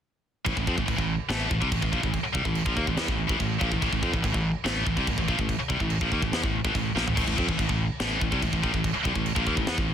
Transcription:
0.45 fretless electric bass A1, distorted electric guitar A2 E3, kick, china
0.57 fretless electric bass A1, distorted electric guitar A2 E3, kick
0.67 fretless electric bass F2, distorted electric guitar F3 C4, kick
0.76 fretless electric bass A1, distorted electric guitar A2 E3, kick
0.86 fretless electric bass A1, distorted electric guitar A2 E3, kick, china
0.97 fretless electric bass A1, distorted electric guitar A2 E3, kick
1.29 fretless electric bass A1, distorted electric guitar A2 E3 A3, snare, china
1.49 fretless electric bass A1, distorted electric guitar A2 E3, kick
1.60 fretless electric bass C2, distorted electric guitar C3 G3, kick
1.71 fretless electric bass A1, distorted electric guitar A2 E3, kick, china
1.82 fretless electric bass A1, distorted electric guitar A2 E3, kick
1.92 fretless electric bass A#1, distorted electric guitar A#2 F3, kick
2.02 fretless electric bass A1, distorted electric guitar A2 E3, kick
2.14 kick, china
2.23 muted fretless electric bass stroke, muted distorted electric guitar stroke
2.33 fretless electric bass C2, distorted electric guitar C3 G3, kick
2.45 fretless electric bass A1, distorted electric guitar A2 E3, kick
2.55 china
2.66 fretless electric bass A#1, distorted electric guitar A#2 F3, kick
2.76 fretless electric bass D#2, distorted electric guitar D#3 A#3, kick
2.87 fretless electric bass A1, distorted electric guitar A2 E3, kick
2.97 fretless electric bass E2, distorted electric guitar E3 B3, snare, china
3.08 fretless electric bass A1, distorted electric guitar A2 E3, kick
3.27 fretless electric bass A1, distorted electric guitar A2 E3, kick
3.38 fretless electric bass A1, distorted electric guitar A2 E3, kick, china
3.59 fretless electric bass A#1, distorted electric guitar A#2 F3, kick
3.71 fretless electric bass A1, distorted electric guitar A2 E3, kick
3.81 fretless electric bass A1, distorted electric guitar A2 E3, kick, china
3.92 fretless electric bass A1, distorted electric guitar A2 E3, kick
4.03 fretless electric bass F2, distorted electric guitar F3 C4, kick
4.13 fretless electric bass A1, distorted electric guitar A2 E3, kick
4.22 fretless electric bass A1, distorted electric guitar A2 E3, kick, china
4.33 fretless electric bass A1, distorted electric guitar A2 E3, kick
4.64 fretless electric bass A1, distorted electric guitar A2 E3 A3, snare, china
4.87 fretless electric bass A1, distorted electric guitar A2 E3, kick
4.96 fretless electric bass C2, distorted electric guitar C3 G3, kick
5.07 fretless electric bass A1, distorted electric guitar A2 E3, kick, china
5.18 fretless electric bass A1, distorted electric guitar A2 E3, kick
5.28 fretless electric bass A#1, distorted electric guitar A#2 F3, kick
5.38 fretless electric bass A1, distorted electric guitar A2 E3, kick
5.49 kick, china
5.59 muted distorted electric guitar stroke, muted fretless electric bass stroke
5.69 fretless electric bass C2, distorted electric guitar C3 G3, kick
5.80 fretless electric bass A1, distorted electric guitar A2 E3, kick
5.90 china
6.01 fretless electric bass A#1, distorted electric guitar A#2 F3, kick
6.12 fretless electric bass D#2, distorted electric guitar D#3 A#3, kick
6.22 fretless electric bass A1, distorted electric guitar A2 E3, kick
6.32 fretless electric bass E2, distorted electric guitar E3 B3, snare, china
6.44 fretless electric bass A1, distorted electric guitar A2 E3, kick
6.65 fretless electric bass A1, distorted electric guitar A2 E3, kick
6.75 fretless electric bass A1, distorted electric guitar A2 E3, kick, china
6.95 fretless electric bass A#1, distorted electric guitar A#2 F3, snare
7.06 fretless electric bass A1, distorted electric guitar A2 E3, floor tom
7.15 fretless electric bass A1, distorted electric guitar A2 E3, kick, crash, china
7.26 fretless electric bass A1, distorted electric guitar A2 E3, kick
7.36 fretless electric bass F2, distorted electric guitar F3 C4, kick
7.48 fretless electric bass A1, distorted electric guitar A2 E3, kick
7.58 fretless electric bass A1, distorted electric guitar A2 E3, kick, china
7.69 fretless electric bass A1, distorted electric guitar A2 E3, kick
8.00 fretless electric bass A1, distorted electric guitar A2 E3 A3, snare, china
8.20 fretless electric bass A1, distorted electric guitar A2 E3, kick
8.31 fretless electric bass C2, distorted electric guitar C3 G3, kick
8.42 fretless electric bass A1, distorted electric guitar A2 E3, kick, china
8.53 fretless electric bass A1, distorted electric guitar A2 E3, kick
8.63 fretless electric bass A#1, distorted electric guitar A#2 F3, kick
8.74 fretless electric bass A1, distorted electric guitar A2 E3, kick
8.84 kick, china
8.95 muted distorted electric guitar stroke, muted fretless electric bass stroke
9.04 fretless electric bass C2, distorted electric guitar C3 G3, kick
9.15 fretless electric bass A1, distorted electric guitar A2 E3, kick
9.26 china
9.35 fretless electric bass A#1, distorted electric guitar A#2 F3, kick
9.46 fretless electric bass D#2, distorted electric guitar D#3 A#3, kick
9.56 fretless electric bass A1, distorted electric guitar A2 E3, kick
9.67 fretless electric bass E2, distorted electric guitar E3 B3, snare, china
9.78 fretless electric bass A1, distorted electric guitar A2 E3, kick

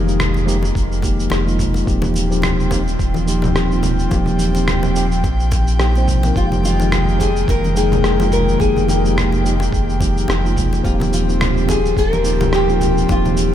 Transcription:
Already playing: analog synth bass F1, analog synth pad D#3 G#3 A#3
0.06 tine electric piano F3 G#3 A#3 D#4 G4, shaker
0.20 cross-stick, low conga, shaker
0.34 muted conga, shaker
0.45 tine electric piano F3 G#3 A#3 D#4 G4, shaker
0.63 muted conga, shaker
0.75 analog synth bass F1, kick, shaker
0.92 shaker
1.01 tine electric piano F3 G#3 A#3 D#4 G4, kick, muted conga, shaker
1.20 shaker
1.30 analog synth bass F1, cross-stick, muted conga, shaker
1.45 tine electric piano F3 G#3 A#3 D#4 F4, shaker
1.59 kick, low conga, shaker
1.74 muted conga, shaker
1.86 analog synth bass D#1, tine electric piano F3 A#3 C4 D#4 G4, analog synth pad F3 C4 G5, kick, shaker
2.02 muted conga, low conga, shaker
2.14 high conga, shaker
2.29 tine electric piano F3 A#3 C4 D#4 G4, shaker
2.42 cross-stick, muted conga, low conga, shaker
2.60 shaker
2.69 tine electric piano F3 A#3 C4 D#4 G4, kick, muted conga, shaker
2.88 shaker
2.99 analog synth bass D#1, kick, shaker
3.14 muted conga, high conga, shaker
3.26 tine electric piano F3 A#3 C4 D#4 G4, shaker
3.42 muted conga, low conga, shaker
3.56 cross-stick, shaker
3.71 tine electric piano F3 A#3 C4 D#4 F4, shaker
3.83 muted conga, low conga, shaker
3.99 shaker
4.10 analog synth bass D#1, tine electric piano F3 A#3 C4 D#4 G4, kick, muted conga, shaker
4.26 low conga, shaker
4.39 high conga, shaker
4.55 tine electric piano F3 A#3 C4 D#4 G4, muted conga, shaker
4.68 cross-stick, low conga, shaker
4.83 muted conga, shaker
4.95 tine electric piano F3 A#3 C4 D#4 G4, shaker
5.12 shaker
5.23 analog synth bass A#1, kick, muted conga, shaker
5.40 shaker
5.52 kick, muted conga, shaker
5.68 shaker
5.79 tine electric piano F3 A#3 C4 D#4 G4, cross-stick, shaker
5.95 tine electric piano F3 A#3 C4 D#4 C5, muted conga, shaker
6.08 kick, low conga, shaker
6.23 tine electric piano F3 A#3 C4 D#4 A#4, muted conga, shaker
6.35 analog synth bass F1, analog synth pad D#3 G#3 A#3, tine electric piano F3 G#3 A#3 D#4 G4, nylon-string guitar F4, kick, shaker
6.52 muted conga, low conga, shaker
6.64 nylon-string guitar F4, high conga, shaker
6.79 tine electric piano F3 G#3 A#3 D#4 G4, muted conga, shaker
6.92 cross-stick, low conga, shaker
7.08 shaker
7.18 tine electric piano F3 G#3 A#3 D#4 G4, nylon-string guitar G#4, kick, muted conga, shaker
7.36 shaker
7.48 analog synth bass F1, nylon-string guitar A#4, kick, muted conga, shaker
7.64 high conga, shaker
7.75 tine electric piano F3 G#3 A#3 D#4 G5, nylon-string guitar G#4, shaker
7.92 muted conga, low conga, shaker
8.04 cross-stick, shaker
8.18 tine electric piano F3 G#3 A#3 D#4 F4, muted conga, shaker
8.32 nylon-string guitar A#4, low conga, shaker
8.49 shaker
8.59 analog synth bass F1, tine electric piano F3 G#3 A#3 D#4 G4, nylon-string guitar G#4, kick, muted conga, shaker
8.76 low conga, shaker
8.88 nylon-string guitar G4, muted conga, high conga, shaker
9.04 tine electric piano F3 G#3 A#3 D#4 G4, shaker
9.18 cross-stick, low conga, shaker
9.32 muted conga, shaker
9.44 tine electric piano F3 G#3 A#3 D#4 G4, shaker
9.60 muted conga, shaker
9.72 analog synth bass F1, kick, shaker
9.89 shaker
9.99 tine electric piano F3 G#3 A#3 D#4 G4, kick, muted conga, shaker
10.18 shaker
10.28 analog synth bass F1, cross-stick, muted conga, shaker
10.43 tine electric piano F3 G#3 A#3 D#4 F4, shaker
10.57 kick, low conga, shaker
10.73 muted conga, shaker
10.83 analog synth bass D#1, tine electric piano F3 A#3 C4 D#4 G4, analog synth pad F3 C4 G4, nylon-string guitar F4, kick, shaker
11.00 muted conga, low conga, shaker
11.13 nylon-string guitar F4, high conga, shaker
11.27 tine electric piano F3 A#3 C4 D#4 G4, shaker
11.41 cross-stick, muted conga, low conga, shaker
11.57 shaker
11.67 tine electric piano F3 A#3 C4 D#4 G4, nylon-string guitar G#4, kick, muted conga, shaker
11.86 shaker
11.97 analog synth bass D#1, nylon-string guitar A#4, kick, shaker
12.13 muted conga, high conga, shaker
12.23 tine electric piano F3 A#3 C4 D#4 G4, shaker
12.41 muted conga, low conga, shaker
12.53 nylon-string guitar G4, cross-stick, shaker
12.68 tine electric piano F3 A#3 C4 D#4 F4, shaker
12.81 muted conga, low conga, shaker
12.98 shaker
13.08 analog synth bass D#1, tine electric piano F3 A#3 C4 D#4 G4, nylon-string guitar F4, kick, muted conga, shaker
13.25 high conga, low conga, shaker
13.37 high conga, shaker

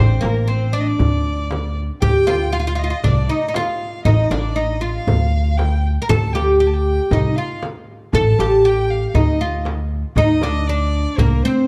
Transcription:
Already playing: oud C4, violin C5
0.00 upright bass A1
0.10 darbuka ka
0.21 upright bass A1, oud A#3, violin A#4, darbuka tek
0.25 frame drum
0.48 oud C4, violin C5
0.73 oud D4, violin D5
0.80 violin D#5
0.87 violin D5
0.99 upright bass D2, darbuka dum, frame drum
1.12 darbuka ka
1.51 darbuka tek, frame drum
1.63 darbuka ka
2.02 upright bass D2, oud G4, violin G5, darbuka dum, frame drum
2.15 darbuka ka
2.27 oud F4, darbuka tek, frame drum
2.52 oud F4, violin F5
2.60 oud F4
2.67 oud F4
2.75 oud F4, violin D#5
2.84 oud F4
2.90 oud F4
3.04 upright bass C2, oud D4, violin D5, darbuka dum, frame drum
3.17 darbuka ka
3.29 oud D#4, violin D#5
3.48 oud D#4
3.54 oud F4, violin F5, darbuka tek, frame drum
3.67 darbuka ka
4.05 upright bass A1, oud D#4, violin D#5, darbuka dum, frame drum
4.19 darbuka ka
4.30 upright bass A1, oud D4, violin D5, darbuka tek, frame drum
4.56 oud D#4, violin D#5
4.81 oud F4, violin F5
4.95 darbuka ka
5.07 upright bass D2, darbuka dum, frame drum
5.20 darbuka ka
5.58 violin G5, darbuka tek, frame drum
5.72 darbuka ka
6.02 oud A#4
6.09 upright bass D2, oud A4, violin A5, darbuka dum, frame drum
6.23 darbuka ka
6.33 oud G4, violin G5, darbuka tek, frame drum
6.59 oud G4, violin G5
6.67 violin A5
6.74 violin G5
7.11 upright bass C2, oud D#4, violin D#5, darbuka dum, frame drum
7.24 darbuka ka
7.36 oud F4, violin F5
7.63 darbuka tek, frame drum
7.75 darbuka ka
8.13 upright bass A1, oud A4, violin A5, frame drum, darbuka dum
8.27 darbuka ka
8.39 upright bass A1, oud G4, darbuka tek, frame drum
8.65 oud G4, violin G5
8.90 violin F5
9.09 violin F5
9.14 upright bass D2, oud D#4, violin D#5, frame drum, darbuka dum
9.28 darbuka ka
9.41 oud F4
9.65 darbuka tek, frame drum
9.79 darbuka ka
10.16 upright bass D2, oud D#4, violin D#5, frame drum, darbuka dum
10.30 darbuka ka
10.41 oud D4, darbuka tek, frame drum
10.67 oud D4, violin D5
11.18 upright bass C2, oud A#3, violin A#4, frame drum, darbuka dum
11.31 darbuka ka
11.43 oud C4, violin C5

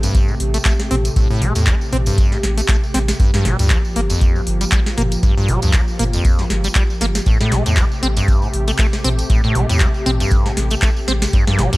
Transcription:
Already playing: analog synth pad C3 A3 G4
0.03 acid bass G2, closed hi-hat, tambourine
0.15 kick, closed hi-hat, tambourine
0.28 acid bass A2, tambourine
0.40 sub bass A1, open hi-hat
0.54 acid bass A3, closed hi-hat, tambourine
0.65 acid bass A3, kick, clap, closed hi-hat, tambourine
0.79 snare, tambourine
0.91 sub bass A1, acid bass C4, mid tom, open hi-hat
1.05 closed hi-hat, tambourine
1.16 acid bass A2, kick, closed hi-hat, tambourine
1.30 acid bass A2, tambourine
1.42 sub bass A1, acid bass A3, mid tom, open hi-hat
1.55 sub bass E2, acid bass A2, closed hi-hat, tambourine
1.67 acid bass A3, kick, clap, closed hi-hat, tambourine
1.81 tambourine
1.92 sub bass A1, acid bass C4, mid tom, open hi-hat
2.06 acid bass G2, closed hi-hat, tambourine
2.18 kick, closed hi-hat, tambourine
2.32 acid bass A2, snare, tambourine
2.43 sub bass A1, snare, open hi-hat
2.58 acid bass A3, closed hi-hat, tambourine
2.68 acid bass A3, kick, clap, closed hi-hat, tambourine
2.84 tambourine
2.94 sub bass A1, acid bass C4, snare, open hi-hat
3.08 snare, closed hi-hat, tambourine
3.20 acid bass G2, analog synth pad F3 A#3, kick, closed hi-hat, tambourine
3.34 acid bass G2, snare, tambourine
3.45 sub bass G1, acid bass G3, snare, mid tom, open hi-hat
3.59 sub bass D2, acid bass G2, closed hi-hat, tambourine
3.70 acid bass G3, kick, clap, closed hi-hat, tambourine
3.85 tambourine
3.96 sub bass G1, acid bass A#3, open hi-hat
4.10 acid bass F2, closed hi-hat, tambourine
4.21 kick, closed hi-hat, tambourine
4.36 acid bass G2, tambourine
4.47 sub bass G1, open hi-hat
4.61 acid bass G3, closed hi-hat, tambourine
4.72 acid bass G3, kick, clap, closed hi-hat
4.86 snare, tambourine
4.98 sub bass G1, acid bass A#3, mid tom, open hi-hat
5.12 closed hi-hat, tambourine
5.23 acid bass G2, kick, closed hi-hat, tambourine
5.37 acid bass G2, tambourine
5.48 sub bass G1, acid bass G3, mid tom, open hi-hat
5.62 sub bass D2, acid bass G2, closed hi-hat, tambourine
5.73 acid bass G3, kick, clap, closed hi-hat, tambourine
5.88 tambourine
5.99 sub bass G1, acid bass A#3, mid tom, open hi-hat
6.13 acid bass F2, closed hi-hat, tambourine
6.25 kick, closed hi-hat, tambourine
6.39 acid bass G2, snare, tambourine
6.50 sub bass G1, snare, open hi-hat
6.64 acid bass G3, closed hi-hat, tambourine
6.75 acid bass G3, kick, clap, closed hi-hat, tambourine
6.90 tambourine
7.01 sub bass G1, acid bass A#3, snare, open hi-hat
7.15 snare, closed hi-hat, tambourine
7.26 acid bass A2, analog synth pad C3 A3 G4, kick, closed hi-hat, tambourine
7.40 acid bass A2, snare, tambourine
7.52 sub bass A1, acid bass A3, snare, mid tom, open hi-hat
7.66 sub bass E2, acid bass A2, closed hi-hat, tambourine
7.77 acid bass A3, kick, clap, closed hi-hat, tambourine
7.92 tambourine
8.03 sub bass A1, acid bass C4, open hi-hat
8.17 acid bass G2, closed hi-hat, tambourine
8.28 kick, closed hi-hat, tambourine
8.42 acid bass A2, tambourine
8.53 sub bass A1, open hi-hat
8.68 acid bass A3, closed hi-hat, tambourine
8.79 acid bass A3, kick, clap, closed hi-hat, tambourine
8.93 snare, tambourine
9.04 sub bass A1, acid bass C4, mid tom, open hi-hat
9.19 closed hi-hat, tambourine
9.29 acid bass A2, kick, closed hi-hat, tambourine
9.44 acid bass A2, tambourine
9.55 sub bass A1, acid bass A3, mid tom, open hi-hat
9.69 sub bass E2, acid bass A2, closed hi-hat, tambourine
9.80 acid bass A3, kick, clap, closed hi-hat, tambourine
9.94 tambourine
10.06 sub bass A1, acid bass C4, mid tom, open hi-hat
10.20 acid bass G2, closed hi-hat, tambourine
10.30 kick, closed hi-hat, tambourine
10.46 acid bass A2, snare, tambourine
10.57 sub bass A1, snare, open hi-hat
10.70 acid bass A3, closed hi-hat, tambourine
10.82 acid bass A3, kick, clap, closed hi-hat, tambourine
10.97 tambourine
11.08 sub bass A1, acid bass C4, snare, open hi-hat
11.22 snare, closed hi-hat, tambourine
11.33 acid bass G2, analog synth pad F3 A#3, kick, closed hi-hat, tambourine
11.47 acid bass G2, snare, tambourine
11.59 sub bass G1, acid bass G3, snare, mid tom, open hi-hat
11.73 sub bass D2, acid bass G2, closed hi-hat, tambourine

